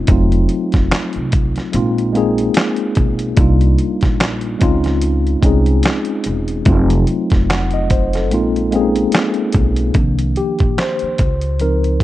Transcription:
Already playing: tine electric piano C4 D#4 F4
0.07 upright bass F1, tine electric piano F#3 A3 C4 D#4, kick, closed hi-hat
0.12 tine electric piano F4
0.32 closed hi-hat
0.49 closed hi-hat
0.72 upright bass F1, kick, snare, closed hi-hat
0.91 muted upright bass stroke, snare, clap, closed hi-hat
1.13 upright bass C2, closed hi-hat
1.32 kick, closed hi-hat
1.56 snare, closed hi-hat
1.72 upright bass A#1, tine electric piano G#3 A#3 C4 D#4 F4, closed hi-hat
1.98 closed hi-hat
2.13 tine electric piano G#3 A#3 C4 D#4, closed hi-hat
2.17 tine electric piano G#4
2.38 closed hi-hat
2.54 snare, clap, closed hi-hat
2.76 closed hi-hat
2.95 upright bass B1, kick, closed hi-hat
3.19 closed hi-hat
3.36 upright bass C2, tine electric piano G3 A#3 D4 D#4, kick, closed hi-hat
3.41 tine electric piano F4
3.61 closed hi-hat
3.78 closed hi-hat
4.01 upright bass A#1, kick, snare, closed hi-hat
4.20 snare, clap, closed hi-hat
4.41 closed hi-hat
4.59 upright bass C#2, tine electric piano G#3 C4 C#4 D#4, kick, closed hi-hat
4.63 tine electric piano F4
4.84 snare, closed hi-hat
5.01 closed hi-hat
5.27 closed hi-hat
5.42 upright bass C2, tine electric piano G#3 C4 C#4 D#4, kick, closed hi-hat
5.46 tine electric piano G#4
5.66 closed hi-hat
5.83 snare, clap, closed hi-hat
6.05 closed hi-hat
6.24 upright bass E1, closed hi-hat
6.48 closed hi-hat
6.65 upright bass F1, tine electric piano F#3 A3 C4 D#4, kick, closed hi-hat
6.69 tine electric piano F4
6.90 closed hi-hat
7.07 closed hi-hat
7.30 upright bass F1, kick, snare, closed hi-hat
7.50 tine electric piano F#5, snare, clap, closed hi-hat
7.71 tine electric piano D#5, closed hi-hat
7.90 tine electric piano C5, kick, closed hi-hat
8.13 tine electric piano A4, snare, closed hi-hat
8.30 upright bass A#1, tine electric piano G#3 A#3 C4 D#4, closed hi-hat
8.34 tine electric piano F4
8.56 closed hi-hat
8.71 tine electric piano G#3 A#3 C4 C#4, closed hi-hat
8.76 tine electric piano G#4
8.81 tine electric piano D#4
8.96 closed hi-hat
9.12 snare, clap, closed hi-hat
9.34 closed hi-hat
9.52 upright bass B1, kick, closed hi-hat
9.76 closed hi-hat
9.94 upright bass C2, tine electric piano D#3 F3 A#3 D4, kick, closed hi-hat
10.19 closed hi-hat
10.36 tine electric piano G4, closed hi-hat
10.59 upright bass A#1, kick, closed hi-hat
10.78 tine electric piano C5, snare, clap, closed hi-hat
10.99 muted upright bass stroke, closed hi-hat
11.18 upright bass C#2, kick, closed hi-hat
11.41 closed hi-hat
11.60 tine electric piano F3 C4 D#4 A#4, closed hi-hat
11.84 closed hi-hat
12.00 kick

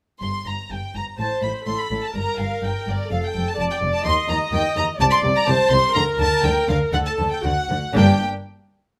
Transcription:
0.21 double bass section G1, cello section G2, violin section C6
0.45 double bass section G1, cello section G2, violin section A#5
0.70 double bass section G1, cello section G2, violin section G5
0.94 double bass section G1, cello section G2, violin section A#5
1.18 double bass section A1, cello section A2, viola section C5, violin section A5
1.42 double bass section A1, cello section A2, violin section B5
1.65 double bass section A1, cello section A2, viola section A4, violin section C6
1.77 violin section B5
1.91 double bass section A1, cello section A2
2.03 violin section A5
2.15 double bass section G1, cello section G2, viola section A#4, violin section A#5
2.39 double bass section G1, cello section G2, violin section F5
2.63 double bass section G1, cello section G2, violin section G5
2.87 double bass section G1, cello section G2, violin section D5
3.10 double bass section F1, cello section F2, viola section A4, violin section F5
3.24 violin section G5
3.35 double bass section F1, cello section F2
3.48 violin section A5
3.58 double bass section F1, cello section F2, viola section D5, violin section A5
3.70 violin section G5
3.81 double bass section F1, cello section F2
3.94 violin section A5
4.05 double bass section D#2, cello section D#3, viola section D#5, violin section C6
4.28 double bass section D#2, cello section D#3, violin section A#5
4.52 double bass section D#2, cello section D#3, violin section G5
4.75 double bass section D#2, cello section D#3, violin section A#5
4.99 double bass section C2, cello section C3, viola section D5, violin section A5
5.11 violin section C6
5.23 double bass section C2, cello section C3
5.35 violin section A#5
5.46 double bass section C2, cello section C3, viola section C5, violin section A5
5.71 double bass section C2, cello section C3, violin section C6
5.93 double bass section D2, cello section D3, viola section A#4, violin section A#5
6.19 double bass section D2, cello section D3, violin section A5
6.43 double bass section D2, cello section D3, violin section G5
6.67 double bass section D2, cello section D3, violin section F5
6.93 double bass section D2, cello section D3, viola section A4, violin section F#5
7.05 violin section A5
7.17 double bass section D2, cello section D3
7.30 violin section G5
7.43 double bass section D2, cello section D3, viola section F#4, violin section F#5
7.70 double bass section D2, cello section D3
7.95 double bass section G1, cello section G2, viola section A#3 D4, violin section G4 G5

